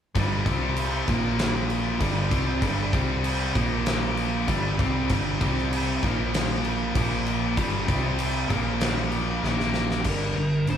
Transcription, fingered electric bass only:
0, 0, Header, 1, 2, 480
1, 0, Start_track
1, 0, Tempo, 619835
1, 120, Time_signature, 4, 2, 24, 8
1, 8343, End_track
2, 0, Start_track
2, 0, Title_t, "Fingered electric bass"
2, 0, Program_c, 0, 33
2, 121, Note_on_c, 0, 31, 104
2, 344, Note_off_c, 0, 31, 0
2, 351, Note_on_c, 0, 36, 92
2, 804, Note_off_c, 0, 36, 0
2, 833, Note_on_c, 0, 34, 101
2, 1525, Note_off_c, 0, 34, 0
2, 1550, Note_on_c, 0, 31, 97
2, 1777, Note_off_c, 0, 31, 0
2, 1795, Note_on_c, 0, 36, 98
2, 2020, Note_off_c, 0, 36, 0
2, 2027, Note_on_c, 0, 31, 102
2, 2256, Note_off_c, 0, 31, 0
2, 2272, Note_on_c, 0, 36, 100
2, 2724, Note_off_c, 0, 36, 0
2, 2753, Note_on_c, 0, 34, 84
2, 3445, Note_off_c, 0, 34, 0
2, 3467, Note_on_c, 0, 31, 105
2, 3696, Note_off_c, 0, 31, 0
2, 3710, Note_on_c, 0, 36, 99
2, 3937, Note_off_c, 0, 36, 0
2, 3951, Note_on_c, 0, 31, 104
2, 4177, Note_off_c, 0, 31, 0
2, 4186, Note_on_c, 0, 36, 95
2, 4641, Note_off_c, 0, 36, 0
2, 4667, Note_on_c, 0, 34, 98
2, 5361, Note_off_c, 0, 34, 0
2, 5385, Note_on_c, 0, 34, 105
2, 5840, Note_off_c, 0, 34, 0
2, 5863, Note_on_c, 0, 31, 104
2, 6093, Note_off_c, 0, 31, 0
2, 6104, Note_on_c, 0, 36, 94
2, 6559, Note_off_c, 0, 36, 0
2, 6578, Note_on_c, 0, 34, 98
2, 7277, Note_off_c, 0, 34, 0
2, 7303, Note_on_c, 0, 34, 104
2, 7760, Note_off_c, 0, 34, 0
2, 7779, Note_on_c, 0, 31, 97
2, 7990, Note_off_c, 0, 31, 0
2, 8026, Note_on_c, 0, 31, 85
2, 8234, Note_off_c, 0, 31, 0
2, 8277, Note_on_c, 0, 31, 80
2, 8343, Note_off_c, 0, 31, 0
2, 8343, End_track
0, 0, End_of_file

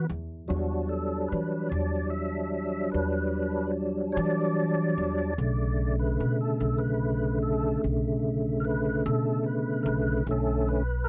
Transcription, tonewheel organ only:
0, 0, Header, 1, 2, 480
1, 0, Start_track
1, 0, Key_signature, 2, "minor"
1, 0, Tempo, 815217
1, 287, Time_signature, 12, 3, 24, 8
1, 6529, End_track
2, 0, Start_track
2, 0, Title_t, "Tonewheel organ"
2, 0, Program_c, 0, 16
2, 282, Note_on_c, 0, 54, 52
2, 284, Note_on_c, 0, 55, 50
2, 286, Note_on_c, 0, 62, 60
2, 288, Note_on_c, 0, 66, 89
2, 520, Note_off_c, 0, 66, 0
2, 525, Note_on_c, 0, 69, 89
2, 755, Note_on_c, 0, 71, 85
2, 759, Note_off_c, 0, 69, 0
2, 994, Note_off_c, 0, 71, 0
2, 998, Note_on_c, 0, 74, 91
2, 1235, Note_off_c, 0, 74, 0
2, 1238, Note_on_c, 0, 76, 85
2, 1708, Note_off_c, 0, 76, 0
2, 1717, Note_on_c, 0, 71, 110
2, 2188, Note_off_c, 0, 71, 0
2, 2428, Note_on_c, 0, 73, 79
2, 2455, Note_off_c, 0, 73, 0
2, 2455, Note_on_c, 0, 74, 121
2, 3141, Note_off_c, 0, 54, 0
2, 3142, Note_off_c, 0, 55, 0
2, 3143, Note_off_c, 0, 62, 0
2, 3171, Note_on_c, 0, 50, 56
2, 3171, Note_on_c, 0, 57, 52
2, 3174, Note_on_c, 0, 49, 65
2, 3508, Note_off_c, 0, 74, 0
2, 3529, Note_on_c, 0, 71, 87
2, 3761, Note_off_c, 0, 71, 0
2, 3772, Note_on_c, 0, 69, 93
2, 3994, Note_on_c, 0, 71, 99
2, 4003, Note_off_c, 0, 69, 0
2, 4350, Note_off_c, 0, 71, 0
2, 4371, Note_on_c, 0, 69, 101
2, 4603, Note_off_c, 0, 69, 0
2, 5065, Note_on_c, 0, 70, 80
2, 5091, Note_on_c, 0, 71, 111
2, 5092, Note_off_c, 0, 70, 0
2, 5323, Note_off_c, 0, 71, 0
2, 5333, Note_on_c, 0, 69, 90
2, 5564, Note_off_c, 0, 69, 0
2, 5570, Note_on_c, 0, 71, 88
2, 5787, Note_on_c, 0, 70, 78
2, 5803, Note_off_c, 0, 71, 0
2, 5815, Note_off_c, 0, 70, 0
2, 5819, Note_on_c, 0, 71, 113
2, 6028, Note_off_c, 0, 50, 0
2, 6028, Note_off_c, 0, 57, 0
2, 6029, Note_off_c, 0, 49, 0
2, 6048, Note_off_c, 0, 71, 0
2, 6058, Note_on_c, 0, 50, 59
2, 6060, Note_on_c, 0, 57, 53
2, 6069, Note_on_c, 0, 61, 66
2, 6069, Note_on_c, 0, 69, 102
2, 6291, Note_on_c, 0, 71, 98
2, 6293, Note_off_c, 0, 69, 0
2, 6374, Note_off_c, 0, 50, 0
2, 6375, Note_off_c, 0, 57, 0
2, 6379, Note_off_c, 0, 61, 0
2, 6501, Note_on_c, 0, 70, 74
2, 6520, Note_off_c, 0, 71, 0
2, 6529, Note_off_c, 0, 70, 0
2, 6529, End_track
0, 0, End_of_file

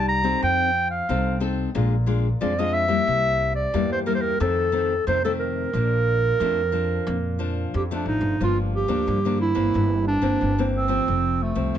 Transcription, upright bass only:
0, 0, Header, 1, 2, 480
1, 0, Start_track
1, 0, Key_signature, -2, "major"
1, 0, Tempo, 666667
1, 301, Time_signature, 4, 2, 24, 8
1, 6054, Key_signature, -2, "minor"
1, 8485, End_track
2, 0, Start_track
2, 0, Title_t, "Upright bass"
2, 0, Program_c, 0, 32
2, 0, Note_on_c, 0, 36, 101
2, 232, Note_off_c, 0, 36, 0
2, 306, Note_on_c, 0, 41, 95
2, 711, Note_off_c, 0, 41, 0
2, 784, Note_on_c, 0, 36, 94
2, 1189, Note_off_c, 0, 36, 0
2, 1260, Note_on_c, 0, 34, 100
2, 1666, Note_off_c, 0, 34, 0
2, 1740, Note_on_c, 0, 41, 91
2, 2146, Note_off_c, 0, 41, 0
2, 2214, Note_on_c, 0, 36, 94
2, 2622, Note_off_c, 0, 36, 0
2, 2690, Note_on_c, 0, 40, 93
2, 3099, Note_off_c, 0, 40, 0
2, 3171, Note_on_c, 0, 41, 103
2, 3580, Note_off_c, 0, 41, 0
2, 3649, Note_on_c, 0, 41, 96
2, 4058, Note_off_c, 0, 41, 0
2, 4128, Note_on_c, 0, 34, 92
2, 4538, Note_off_c, 0, 34, 0
2, 4608, Note_on_c, 0, 41, 92
2, 5018, Note_off_c, 0, 41, 0
2, 5088, Note_on_c, 0, 41, 105
2, 5498, Note_off_c, 0, 41, 0
2, 5574, Note_on_c, 0, 41, 99
2, 5778, Note_off_c, 0, 41, 0
2, 5799, Note_on_c, 0, 33, 76
2, 5905, Note_off_c, 0, 33, 0
2, 5910, Note_on_c, 0, 31, 85
2, 6028, Note_off_c, 0, 31, 0
2, 6052, Note_on_c, 0, 31, 84
2, 6359, Note_off_c, 0, 31, 0
2, 6396, Note_on_c, 0, 38, 82
2, 6506, Note_off_c, 0, 38, 0
2, 6535, Note_on_c, 0, 43, 88
2, 6841, Note_off_c, 0, 43, 0
2, 6877, Note_on_c, 0, 31, 84
2, 6987, Note_off_c, 0, 31, 0
2, 7019, Note_on_c, 0, 31, 88
2, 7324, Note_off_c, 0, 31, 0
2, 7359, Note_on_c, 0, 31, 73
2, 7469, Note_off_c, 0, 31, 0
2, 7501, Note_on_c, 0, 31, 80
2, 7909, Note_off_c, 0, 31, 0
2, 7978, Note_on_c, 0, 29, 91
2, 8285, Note_off_c, 0, 29, 0
2, 8320, Note_on_c, 0, 36, 80
2, 8431, Note_off_c, 0, 36, 0
2, 8460, Note_on_c, 0, 41, 87
2, 8485, Note_off_c, 0, 41, 0
2, 8485, End_track
0, 0, End_of_file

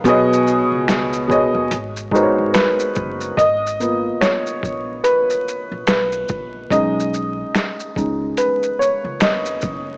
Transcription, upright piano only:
0, 0, Header, 1, 2, 480
1, 0, Start_track
1, 0, Tempo, 833333
1, 24, Time_signature, 4, 2, 24, 8
1, 5745, End_track
2, 0, Start_track
2, 0, Title_t, "Upright piano"
2, 0, Program_c, 0, 0
2, 0, Control_c, 0, 64, 127
2, 26, Note_on_c, 0, 47, 113
2, 31, Control_c, 0, 64, 0
2, 32, Note_on_c, 0, 59, 97
2, 38, Note_on_c, 0, 68, 100
2, 43, Note_on_c, 0, 73, 97
2, 50, Note_on_c, 0, 75, 122
2, 123, Control_c, 0, 64, 127
2, 533, Note_off_c, 0, 47, 0
2, 536, Note_off_c, 0, 59, 0
2, 539, Note_off_c, 0, 68, 0
2, 542, Note_off_c, 0, 73, 0
2, 545, Note_off_c, 0, 75, 0
2, 736, Note_on_c, 0, 47, 77
2, 742, Note_on_c, 0, 59, 79
2, 747, Note_on_c, 0, 68, 75
2, 753, Note_on_c, 0, 73, 78
2, 759, Note_on_c, 0, 75, 95
2, 980, Note_off_c, 0, 47, 0
2, 983, Note_off_c, 0, 59, 0
2, 986, Note_off_c, 0, 68, 0
2, 989, Note_off_c, 0, 73, 0
2, 992, Note_off_c, 0, 75, 0
2, 993, Control_c, 0, 64, 0
2, 1075, Control_c, 0, 64, 127
2, 1221, Note_on_c, 0, 56, 81
2, 1225, Note_on_c, 0, 63, 85
2, 1230, Note_on_c, 0, 66, 78
2, 1235, Note_on_c, 0, 70, 82
2, 1240, Note_on_c, 0, 71, 67
2, 1243, Note_on_c, 0, 72, 71
2, 1279, Note_off_c, 0, 72, 0
2, 1282, Note_on_c, 0, 73, 85
2, 1453, Note_off_c, 0, 71, 0
2, 1461, Note_on_c, 0, 71, 93
2, 1731, Note_off_c, 0, 56, 0
2, 1733, Note_off_c, 0, 63, 0
2, 1735, Note_off_c, 0, 66, 0
2, 1738, Note_off_c, 0, 70, 0
2, 1761, Note_off_c, 0, 73, 0
2, 1920, Note_off_c, 0, 71, 0
2, 1942, Note_on_c, 0, 75, 103
2, 1953, Control_c, 0, 64, 0
2, 2036, Control_c, 0, 64, 127
2, 2187, Note_on_c, 0, 58, 53
2, 2191, Note_on_c, 0, 59, 51
2, 2195, Note_on_c, 0, 65, 57
2, 2400, Note_off_c, 0, 75, 0
2, 2424, Note_on_c, 0, 73, 91
2, 2883, Note_off_c, 0, 58, 0
2, 2885, Note_off_c, 0, 59, 0
2, 2886, Note_off_c, 0, 65, 0
2, 2901, Note_on_c, 0, 71, 93
2, 2919, Note_off_c, 0, 73, 0
2, 3374, Note_off_c, 0, 71, 0
2, 3383, Note_on_c, 0, 71, 80
2, 3865, Note_on_c, 0, 75, 96
2, 3869, Note_on_c, 0, 56, 55
2, 3871, Note_on_c, 0, 61, 50
2, 3873, Control_c, 0, 64, 0
2, 3876, Note_on_c, 0, 63, 61
2, 3878, Note_off_c, 0, 71, 0
2, 3959, Control_c, 0, 64, 127
2, 4564, Note_off_c, 0, 56, 0
2, 4565, Note_off_c, 0, 61, 0
2, 4567, Note_off_c, 0, 63, 0
2, 4589, Note_on_c, 0, 56, 51
2, 4592, Note_on_c, 0, 61, 44
2, 4593, Note_on_c, 0, 63, 55
2, 4803, Note_off_c, 0, 56, 0
2, 4805, Note_off_c, 0, 61, 0
2, 4806, Note_off_c, 0, 63, 0
2, 4826, Note_on_c, 0, 71, 82
2, 4854, Note_off_c, 0, 75, 0
2, 5065, Note_on_c, 0, 73, 83
2, 5072, Note_off_c, 0, 71, 0
2, 5302, Note_on_c, 0, 75, 84
2, 5312, Note_off_c, 0, 73, 0
2, 5664, Note_off_c, 0, 75, 0
2, 5745, End_track
0, 0, End_of_file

